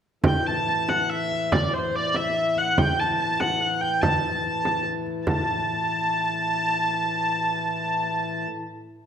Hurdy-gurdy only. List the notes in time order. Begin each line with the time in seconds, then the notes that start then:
0.27 G5
0.47 A5
0.67 A5
0.89 F#5
1.10 E5
1.52 D5
1.74 C5
1.96 D5
2.16 E5
2.58 F#5
2.79 G5
2.99 A5
3.20 A5
3.40 F#5
3.61 F#5
3.81 G5
4.01 A5
5.27 A5